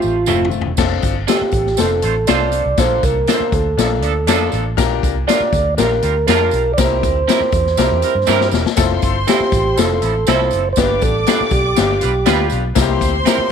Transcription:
Already playing: A3 C4 F4 G4 C5 E5
0.02 A1, tambourine
0.26 F1 A3 C4 E4 F4 A4, mid tom, tambourine
0.45 floor tom
0.51 tambourine
0.61 floor tom
0.66 E1
0.77 F1 C4 D4 F4 A4, kick, snare, crash, tambourine
1.03 G1, kick, closed hi-hat, tambourine
1.27 C4 D4 F4 G4 A4, snare, closed hi-hat, tambourine
1.41 muted fingered electric bass stroke
1.51 A1, kick, closed hi-hat, tambourine
1.67 snare
1.77 F1 A3 C4 D4 F4 A4 C5, snare, closed hi-hat, tambourine
2.02 A1 A3 F4 C5, closed hi-hat, tambourine
2.27 C2 A3 C4 D4 F4 A4 C5 D5, snare, closed hi-hat, tambourine
2.52 closed hi-hat, tambourine
2.66 C2
2.77 A#1 A#2 A#3 D4 F4 A4 C5, kick, snare, closed hi-hat, tambourine
3.03 C2 A#4, kick, closed hi-hat, tambourine
3.27 A#3 D4 F4 A4 A#4, snare, closed hi-hat, tambourine
3.34 C5
3.40 muted fingered electric bass stroke
3.52 D2 A4, kick, closed hi-hat, tambourine
3.77 A#1 F3 A#3 C4 D4 F4 A4, snare, closed hi-hat, tambourine
3.84 D4
4.02 D2 F3 D4 A4, closed hi-hat, tambourine
4.27 F2 F3 A#3 C#4 D4 F4 A4, snare, closed hi-hat, tambourine
4.34 D4
4.52 A1, closed hi-hat, tambourine
4.77 A#1 A#2 D4 F4 G4 A#4, kick, snare, closed hi-hat, tambourine
5.03 C2, kick, closed hi-hat, tambourine
5.27 D4 F4 G4 A4 A#4 D5, snare, closed hi-hat, tambourine
5.33 A#4
5.40 muted fingered electric bass stroke
5.53 D2, kick, closed hi-hat, tambourine
5.77 A#1 G3 D4 F4 G4 A#4, snare, closed hi-hat, tambourine
6.02 D2 G3 F4 A#4, closed hi-hat, tambourine
6.28 F2 G3 D4 F4 G4 G#4 A#4, snare, closed hi-hat, tambourine
6.35 A5
6.51 B1, closed hi-hat, tambourine
6.74 C5 D5
6.78 C2 C3 C4 D#4 G4 A#4, kick, snare, closed hi-hat, tambourine
6.85 E4
7.03 D2, kick, closed hi-hat, tambourine
7.28 C4 E4 G4 A#4, snare, closed hi-hat, tambourine
7.40 muted fingered electric bass stroke
7.52 E2, kick, closed hi-hat, tambourine
7.67 snare
7.77 C2 G3 C4 E4 G4 A#4, snare, closed hi-hat, tambourine
7.91 E2
8.02 G3 E4 A#4, closed hi-hat, tambourine
8.15 G2
8.27 G2 G3 C4 E4 G4 A#4, snare, tambourine
8.41 snare
8.52 E1, snare, tambourine
8.66 snare
8.77 F1 C4 E4 F4 A4 C5 C6, kick, snare, closed hi-hat, tambourine
9.02 G1, kick, closed hi-hat, tambourine
9.27 C4 E4 F4 G4 A4, snare, closed hi-hat, tambourine
9.40 muted fingered electric bass stroke
9.52 A1, kick, closed hi-hat, tambourine
9.76 F1 F3 C4 E4 F4 A4, snare, closed hi-hat, tambourine
10.02 A1 F3 E4 A4, closed hi-hat, tambourine
10.27 C2 F3 C4 E4 F4 A4 C5, snare, closed hi-hat, tambourine
10.51 F#1, closed hi-hat, tambourine
10.73 C5 D5 D6, tambourine
10.77 G1 G2 B3 D4 F4 G4 B4, kick, snare, closed hi-hat
11.01 A1 A4, kick, closed hi-hat, tambourine
11.26 B3 D4 F4 G4 B4, snare, closed hi-hat, tambourine
11.41 muted fingered electric bass stroke
11.51 B1 G4, kick, closed hi-hat, tambourine
11.76 G1 G3 B3 D4 F4 G4 B4, snare, closed hi-hat, tambourine
12.00 B1 G3 F4 B4, closed hi-hat, tambourine
12.25 D2 G3 B3 D4 F4 G4 B4, snare, closed hi-hat, tambourine
12.50 B1, closed hi-hat, tambourine
12.75 C2 C3 A#3 C4 E4 F4 C5 C6, kick, snare, closed hi-hat, tambourine
12.82 G4
13.01 D2, kick, closed hi-hat, tambourine
13.25 A#3 C4 E4 G4 A#4 C5, snare, closed hi-hat, tambourine
13.38 muted fingered electric bass stroke

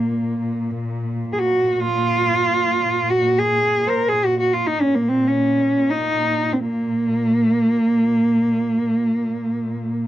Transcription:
Already playing: A#2 A#3
1.33 G#4
1.39 F#4
1.72 F#4
1.82 F4
3.10 F#4
3.38 G#4
3.87 A#4 C5
4.08 G#4
4.25 F#4
4.40 F#4
4.53 F4
4.67 D#4
4.81 C#4
4.95 A#3
5.08 C4
5.27 C#4
5.90 D#4
6.53 C4
6.60 A#3

